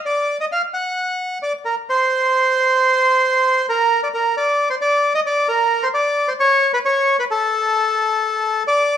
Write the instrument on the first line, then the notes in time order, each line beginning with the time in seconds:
bandoneon
0.06 D5
0.40 D#5
0.52 F5
0.74 F#5
1.42 D5
1.65 A#4
1.89 C5
3.69 A#4
4.03 D5
4.14 A#4
4.37 D5
4.70 C5
4.81 D5
5.15 D#5
5.26 D5
5.48 A#4
5.83 C5
5.94 D5
6.28 C5
6.40 C#5
6.74 B4
6.85 C#5
7.19 B4
7.31 A4
8.67 D5